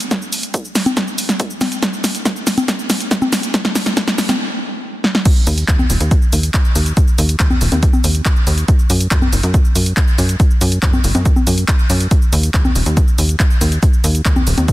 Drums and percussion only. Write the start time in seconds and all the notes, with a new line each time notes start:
0.00 closed hi-hat, shaker
0.11 kick, snare, closed hi-hat, shaker
0.22 shaker
0.33 open hi-hat, shaker
0.43 closed hi-hat, shaker
0.54 kick, closed hi-hat, shaker
0.65 shaker
0.75 snare, open hi-hat, shaker
0.86 closed hi-hat, high conga, shaker
0.97 kick, snare, closed hi-hat, shaker
1.08 shaker
1.18 open hi-hat, shaker
1.29 snare, closed hi-hat, shaker
1.40 kick, closed hi-hat, shaker
1.50 shaker
1.61 snare, open hi-hat, high conga, shaker
1.72 closed hi-hat, shaker
1.83 kick, snare, closed hi-hat, shaker
1.93 shaker
2.04 snare, open hi-hat, shaker
2.15 closed hi-hat, shaker
2.25 kick, snare, closed hi-hat, shaker
2.36 shaker
2.47 snare, open hi-hat, shaker
2.58 closed hi-hat, high conga, shaker
2.68 kick, snare, closed hi-hat, shaker
2.79 shaker
2.90 snare, open hi-hat, shaker
3.00 closed hi-hat, shaker
3.11 kick, snare, closed hi-hat, shaker
3.22 high conga, shaker
3.33 snare, open hi-hat, shaker
3.43 closed hi-hat, shaker
3.54 kick, snare, closed hi-hat, shaker
3.65 snare, shaker
3.75 snare, open hi-hat, shaker
3.86 snare, closed hi-hat, shaker
3.97 kick, snare, closed hi-hat, shaker
4.08 snare, shaker
4.18 snare, open hi-hat, shaker
4.29 snare, closed hi-hat, high conga, shaker
5.04 snare
5.15 snare
5.25 kick, closed hi-hat, crash, shaker
5.36 shaker
5.47 open hi-hat, shaker
5.58 closed hi-hat, shaker
5.68 kick, clap, closed hi-hat, shaker
5.79 high conga, shaker
5.90 open hi-hat, shaker
6.01 closed hi-hat, shaker
6.11 kick, closed hi-hat, shaker
6.22 shaker
6.33 open hi-hat, shaker
6.43 closed hi-hat, shaker
6.54 kick, clap, closed hi-hat, shaker
6.65 shaker
6.75 open hi-hat, shaker
6.86 closed hi-hat, shaker
6.97 kick, closed hi-hat, shaker
7.08 shaker
7.18 open hi-hat, shaker
7.29 closed hi-hat, shaker
7.40 kick, clap, closed hi-hat, shaker
7.50 high conga, shaker
7.61 open hi-hat, shaker
7.72 closed hi-hat, high conga, shaker
7.83 kick, closed hi-hat, shaker
7.93 high conga, shaker
8.04 open hi-hat, shaker
8.15 closed hi-hat, shaker
8.25 kick, clap, closed hi-hat, shaker
8.36 shaker
8.47 open hi-hat, shaker
8.58 closed hi-hat, shaker
8.68 kick, closed hi-hat, shaker
8.79 shaker
8.90 open hi-hat, shaker
9.00 closed hi-hat, shaker
9.11 kick, clap, closed hi-hat, shaker
9.22 high conga, shaker
9.33 open hi-hat, shaker
9.43 closed hi-hat, shaker
9.54 kick, closed hi-hat, shaker
9.65 shaker
9.75 open hi-hat, shaker
9.86 closed hi-hat, shaker
9.97 kick, clap, closed hi-hat, shaker
10.08 shaker
10.18 open hi-hat, shaker
10.29 closed hi-hat, shaker
10.40 kick, closed hi-hat, shaker
10.51 shaker
10.61 open hi-hat, shaker
10.72 closed hi-hat, shaker
10.83 kick, clap, closed hi-hat, shaker
10.93 high conga, shaker
11.04 open hi-hat, shaker
11.15 closed hi-hat, high conga, shaker
11.25 kick, closed hi-hat, shaker
11.36 high conga, shaker
11.47 open hi-hat, shaker
11.58 closed hi-hat, shaker
11.68 kick, clap, closed hi-hat, shaker
11.79 shaker
11.90 open hi-hat, shaker
12.00 closed hi-hat, shaker
12.11 kick, closed hi-hat, shaker
12.22 shaker
12.33 open hi-hat, shaker
12.43 closed hi-hat, shaker
12.54 kick, clap, closed hi-hat, shaker
12.65 high conga, shaker
12.76 open hi-hat, shaker
12.86 closed hi-hat, shaker
12.97 kick, closed hi-hat, shaker
13.08 shaker
13.18 open hi-hat, shaker
13.29 closed hi-hat, shaker
13.40 kick, clap, closed hi-hat, shaker
13.51 shaker
13.61 open hi-hat, shaker
13.72 closed hi-hat, shaker
13.83 kick, closed hi-hat, shaker
13.93 shaker
14.04 open hi-hat, shaker
14.15 closed hi-hat, shaker
14.25 kick, clap, closed hi-hat, shaker
14.36 high conga, shaker
14.47 open hi-hat, shaker
14.58 closed hi-hat, high conga, shaker
14.68 kick, closed hi-hat, shaker